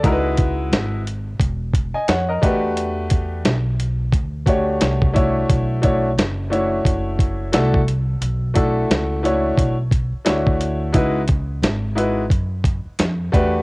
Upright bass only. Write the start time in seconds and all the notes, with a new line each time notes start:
0.04 C#2
0.72 G#1
1.40 E1
1.94 muted upright bass stroke
2.08 F2
2.43 E2
3.45 B1
4.12 D2
4.81 C2
5.50 B1
6.18 F#1
6.85 F#1
7.54 C2
8.21 B1
8.90 C#2
9.57 B1
10.12 muted upright bass stroke
10.26 D2
10.95 C#2
11.63 G#1
12.31 F#2
12.86 muted upright bass stroke
12.99 F2
13.33 E2